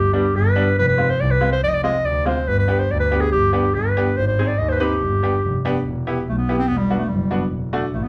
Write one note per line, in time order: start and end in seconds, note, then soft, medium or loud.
0.00 0.17 G1 medium
0.00 0.14 G4 medium
0.13 0.24 G3 medium
0.13 0.24 B3 soft
0.13 0.24 D4 medium
0.13 0.38 G4 medium
0.34 0.60 G1 medium
0.34 0.78 B4 medium
0.55 0.66 G3 medium
0.55 0.67 B3 medium
0.55 0.67 D4 medium
0.78 1.03 F1 loud
0.78 0.88 B4 loud
0.89 1.12 B4 medium
0.98 1.09 G#3 medium
0.98 1.09 C4 medium
0.98 1.09 F4 medium
1.10 1.22 C5 medium
1.20 1.46 C2 loud
1.20 1.32 D5 medium
1.31 1.52 B4 medium
1.41 1.52 G#3 medium
1.41 1.52 C4 medium
1.41 1.52 F4 medium
1.52 1.62 C5 loud
1.63 1.88 F1 medium
1.63 1.70 D5 loud
1.68 1.76 D#5 medium
1.74 1.83 D5 loud
1.83 1.95 G#3 medium
1.83 1.95 C4 medium
1.83 1.94 F4 medium
1.83 2.07 D#5 medium
2.05 2.31 D2 medium
2.05 2.26 D5 medium
2.25 2.37 G#3 medium
2.25 2.37 C4 medium
2.25 2.37 F4 medium
2.25 2.49 C5 medium
2.47 2.73 G1 medium
2.47 2.59 B4 loud
2.59 2.81 B4 medium
2.68 2.79 B3 medium
2.68 2.79 D4 medium
2.68 2.80 G4 medium
2.80 2.93 C5 medium
2.90 3.16 D2 loud
2.90 2.99 D5 medium
3.00 3.22 B4 medium
3.11 3.22 B3 medium
3.11 3.22 D4 medium
3.11 3.22 G4 medium
3.21 3.31 G#4 medium
3.32 3.58 G1 medium
3.32 3.52 G4 loud
3.53 3.64 B3 medium
3.53 3.64 D4 medium
3.53 3.76 G4 medium
3.53 3.64 G4 medium
3.74 4.00 G1 loud
3.74 4.19 B4 medium
3.97 4.07 B3 medium
3.97 4.07 D4 medium
3.97 4.07 G4 medium
4.17 4.42 G#1 medium
4.17 4.27 C5 loud
4.27 4.49 C5 medium
4.39 4.49 C4 medium
4.39 4.49 D#4 soft
4.39 4.49 G#4 medium
4.48 4.60 D5 medium
4.58 4.84 D#2 medium
4.58 4.71 D#5 medium
4.69 4.76 B4 medium
4.69 4.74 C5 medium
4.75 4.82 C5 medium
4.80 4.91 C4 medium
4.80 4.91 D#4 medium
4.80 5.64 G4 medium
4.80 4.91 B4 medium
5.00 5.26 G1 medium
5.23 5.33 B3 soft
5.23 5.33 D4 medium
5.23 5.34 G4 medium
5.44 5.69 F1 medium
5.65 5.75 B3 medium
5.65 5.75 D4 medium
5.65 5.75 G4 medium
5.85 6.10 E1 medium
6.07 6.17 B3 medium
6.07 6.17 E4 medium
6.07 6.17 G4 medium
6.27 6.52 B1 medium
6.27 6.37 A3 medium
6.38 6.57 B3 medium
6.49 6.59 B3 medium
6.49 6.59 E4 soft
6.49 6.59 G4 medium
6.58 6.69 C4 loud
6.67 6.94 E1 medium
6.67 6.79 B3 medium
6.77 7.00 G3 medium
6.90 7.00 B3 medium
6.90 7.00 D4 soft
6.90 7.00 F#4 medium
6.98 7.10 A3 medium
7.08 7.35 F#1 loud
7.08 7.51 G3 medium
7.31 7.41 B3 medium
7.31 7.41 D4 medium
7.31 7.41 F#4 medium
7.52 7.77 E1 medium
7.73 7.83 A3 medium
7.73 7.83 D4 medium
7.73 7.83 F#4 medium
7.93 8.08 A1 medium
7.93 8.05 A3 medium
8.04 8.08 B3 medium